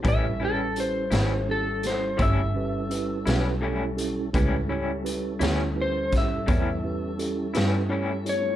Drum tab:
HH |x-xx-xx-xx-x|x-xx-xx-xx-x|
SD |---o-o---o--|---o-o---o--|
BD |o-----o-----|o----oo-----|